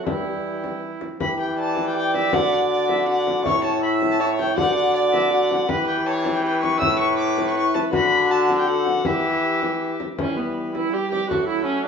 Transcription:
0.06 1.01 E3 medium
0.06 1.01 G3 medium
0.06 1.00 E4 medium
0.06 1.02 G5 medium
0.06 frame drum medium
0.64 frame drum soft
1.01 frame drum soft
1.20 2.29 E3 medium
1.20 1.91 G4 medium
1.20 1.38 B5 loud
1.20 frame drum medium
1.40 1.58 G5 medium
1.58 3.48 D5 medium
1.58 1.86 A5 medium
1.76 frame drum medium
1.88 1.96 G5 medium
1.95 2.33 G4 medium
1.95 2.14 G5 loud
2.14 2.35 E5 medium
2.14 frame drum medium
2.32 3.46 D3 medium
2.32 3.07 F#4 medium
2.32 2.52 F#5 loud
2.32 frame drum medium
2.53 2.60 F#5 medium
2.72 2.90 D5 medium
2.89 3.08 E5 medium
2.89 frame drum medium
3.08 3.47 F#4 medium
3.08 3.44 F#5 loud
3.27 frame drum soft
3.45 4.56 A2 medium
3.45 4.19 E4 medium
3.45 3.82 C#5 medium
3.45 3.63 C#6 loud
3.45 frame drum medium
3.64 3.82 A5 medium
3.83 4.21 E5 medium
3.83 3.91 B5 loud
4.02 frame drum medium
4.11 4.19 A5 loud
4.20 4.58 E4 medium
4.20 4.55 C#5 medium
4.20 4.27 A5 loud
4.39 4.57 G5 loud
4.39 frame drum soft
4.56 5.66 D3 medium
4.56 5.30 F#4 medium
4.56 5.66 D5 loud
4.56 4.74 F#5 loud
4.56 frame drum medium
4.75 4.94 F#5 loud
4.95 5.02 D5 loud
5.13 5.31 E5 loud
5.13 frame drum medium
5.31 5.67 F#4 medium
5.31 5.70 F#5 loud
5.51 frame drum medium
5.68 6.82 E3 medium
5.68 6.39 G4 medium
5.68 6.05 B4 medium
5.68 5.87 B5 loud
5.68 frame drum medium
5.87 6.08 G5 loud
6.06 6.43 C#5 medium
6.06 6.34 A5 loud
6.25 frame drum medium
6.35 6.43 G5 medium
6.44 6.81 G4 medium
6.44 7.90 B4 medium
6.44 6.61 G5 loud
6.62 6.79 C#6 loud
6.62 frame drum medium
6.80 7.75 A2 loud
6.80 7.54 E4 medium
6.80 6.98 E6 loud
6.80 frame drum medium
6.99 7.17 C#6 loud
7.17 7.45 D6 loud
7.38 frame drum medium
7.47 7.55 C#6 medium
7.55 7.91 E4 medium
7.55 7.74 C#6 loud
7.75 7.82 A5 loud
7.75 frame drum medium
7.92 9.01 D3 loud
7.92 8.27 F#4 medium
7.92 8.66 F#4 medium
7.92 8.32 B5 loud
7.92 frame drum medium
8.30 8.66 F#4 medium
8.30 8.57 A5 loud
8.49 frame drum medium
8.58 8.69 G5 medium
8.67 9.06 F#4 medium
8.67 9.05 A4 medium
8.67 9.08 F#5 loud
8.86 frame drum soft
9.04 9.98 E3 medium
9.04 10.00 G4 medium
9.04 9.99 G4 medium
9.04 10.01 E5 loud
9.04 frame drum medium
9.62 frame drum soft
10.00 frame drum medium
10.18 10.94 E3 medium
10.18 10.90 G3 soft
10.18 10.38 C#4 medium
10.18 10.90 B4 medium
10.18 frame drum medium
10.37 10.74 B3 medium
10.74 10.95 E4 medium
10.74 frame drum soft
10.93 11.30 G3 medium
10.93 11.31 G3 medium
10.93 11.11 G4 medium
10.93 11.34 B4 soft
11.11 11.29 G4 medium
11.11 frame drum soft
11.30 11.88 F#3 medium
11.30 11.88 A3 medium
11.30 11.47 F#4 medium
11.30 11.88 A4 medium
11.30 frame drum medium
11.48 11.64 E4 medium
11.65 11.85 C#4 medium

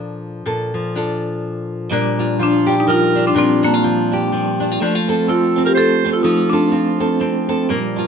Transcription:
0.00 0.45 A#2 medium
0.00 0.72 F3 medium
0.00 0.95 D4 soft
0.00 0.96 F4 medium
0.00 0.44 A4 medium
0.46 1.88 A#2 medium
0.46 0.94 A4 medium
0.74 2.38 F3 medium
0.95 1.89 D4 soft
0.95 1.89 F4 soft
0.95 1.90 A4 soft
1.91 3.33 A#2 medium
1.91 2.86 G3 medium
1.91 3.15 D4 medium
2.19 2.66 D4 medium
2.19 3.62 F4 medium
2.39 2.87 F3 medium
2.39 2.80 D4 medium
2.39 3.83 F4 medium
2.39 2.75 F4 medium
2.66 3.14 D4 medium
2.66 4.11 G4 medium
2.78 2.89 D#4 loud
2.78 2.87 G4 medium
2.87 3.84 F3 medium
2.87 3.34 G3 medium
2.87 3.28 F4 loud
2.87 3.23 A#4 medium
3.15 3.62 D4 medium
3.15 3.33 D4 medium
3.27 3.36 D4 medium
3.27 3.36 F4 medium
3.35 4.77 A#2 medium
3.35 4.32 G3 medium
3.35 3.66 C4 medium
3.35 3.62 D4 medium
3.35 3.62 F4 medium
3.63 4.28 A#3 medium
3.63 3.74 D4 medium
3.63 4.11 D4 medium
3.63 4.29 D4 medium
3.74 4.59 F4 medium
3.84 4.32 F3 medium
3.84 5.28 F4 medium
4.12 4.59 D4 medium
4.12 4.81 G4 medium
4.32 4.81 F3 medium
4.32 4.80 G3 medium
4.60 4.71 D4 medium
4.60 4.86 D4 medium
4.71 4.81 F4 medium
4.80 6.24 F3 medium
4.80 5.75 A3 medium
4.80 4.95 D4 medium
4.95 6.05 F4 medium
5.08 5.55 C4 medium
5.08 6.23 A4 medium
5.28 5.57 C4 medium
5.28 6.72 F4 medium
5.28 5.68 F4 medium
5.28 5.63 A4 medium
5.56 6.03 C4 medium
5.56 5.77 C4 medium
5.65 5.77 G4 loud
5.65 5.75 A#4 medium
5.75 6.24 A3 medium
5.75 6.23 C4 medium
5.75 6.16 A4 loud
5.75 6.11 C5 medium
6.05 6.51 C4 medium
6.05 6.24 F4 medium
6.12 6.24 F4 medium
6.12 6.23 A4 medium
6.23 8.07 F3 medium
6.23 7.19 A3 medium
6.23 6.52 D#4 medium
6.23 7.98 F4 medium
6.23 6.50 A4 medium
6.50 6.99 C4 medium
6.50 7.15 D4 medium
6.50 7.17 F4 medium
6.50 6.99 A4 medium
6.72 7.20 C4 medium
6.72 8.07 F4 medium
7.00 7.48 C4 medium
7.00 7.48 A4 medium
7.21 7.69 A3 medium
7.21 7.66 C4 medium
7.49 7.75 C4 medium
7.49 7.67 A4 medium
7.69 8.07 A#2 medium
7.69 8.07 G3 medium
7.69 8.07 A#3 medium
7.96 8.07 D4 medium
7.96 8.07 F4 medium

